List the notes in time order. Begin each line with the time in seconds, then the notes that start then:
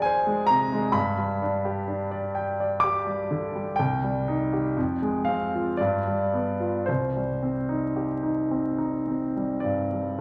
Already playing: F2 G#3 D4 G#4 C5 D5 A#5
0.02 C5 G#5
0.27 G#3
0.46 C3 A#5
0.73 G#3
0.92 G2 B5
1.18 G3
1.42 D4
1.65 G4
1.88 D4
2.11 D5
2.35 G5
2.60 D5
2.80 G4 D6
3.07 G3
3.31 D3
3.56 G3
3.76 C2 G5
4.04 G3
4.28 D#4
4.53 G4
4.77 F2
5.02 G#3
5.25 C4 F5
5.55 F4
5.77 G2 D5
6.07 G3
6.34 B3
6.60 F4
6.86 C2 C5
7.16 G3
7.43 C4
7.69 D#4
7.96 G4
8.23 D#4
8.51 C4
8.78 D#4
9.07 C4
9.36 G3
9.60 G2 D5
9.93 G3